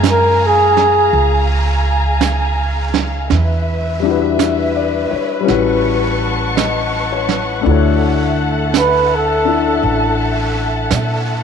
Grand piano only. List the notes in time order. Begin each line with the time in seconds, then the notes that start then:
Already playing: G#3 C#4 F4 F#4 A#4 D#5
4.00 G3 D4
4.06 E4 F#4
4.11 B4
4.40 E5
4.76 D5
5.11 C#5
5.40 G3 C#4
5.47 E4 F#4
5.51 B4
6.56 D#5
7.12 C#5
7.61 A3 D4
7.66 E4 F#4
7.71 C#5
9.45 D4 E4 A4